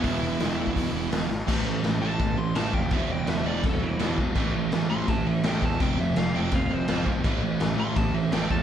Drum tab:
CC |----------------|x---x---x---x---|x---x---x---x---|x---x---x---x---|
HH |o---o---o---o---|----------------|----------------|----------------|
SD |----o-------o-o-|----o-------o---|----o-------o---|----o-------o---|
BD |o------oo-------|o-------o-----o-|o-------o-----o-|o-------o-----o-|

CC |x---x---x---x---|x---x---x---x---|
HH |----------------|----------------|
SD |----o-------o---|----o-------o---|
BD |o-------o-----o-|o-------o-----o-|